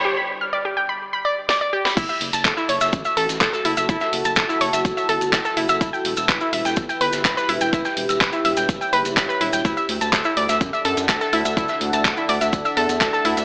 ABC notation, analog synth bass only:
X:1
M:4/4
L:1/16
Q:1/4=125
K:F#phr
V:1 name="Analog synth bass" clef=bass
z16 | F,,, z F,,, F,,, F,,, z F,,, F,,, A,,, z A,,, A,,, F,,, z F,,, F,,, | F,,, z F,,, F,,, F,,, z F,,, F,,, F,,, z G,,, G,,, F,,, z F,,, F,,, | E,,, z E,,, E,,, E,,, z E,,, E,,, G,,, z G,,, G,,, E,,, z E,,, E,,, |
E,,, z E,,, E,,, E,,, z E,,, E,,, E,,, z F,,, F,,, E,,, z E,,, E,,, | D,, z D,, D,, D,, z D,, D,, F,, z F,, F,, D,, z D,, D,, | D,, z D,, D,, D,, z D,, D,, D,, z E,, E,, D,, z D,, D,, |]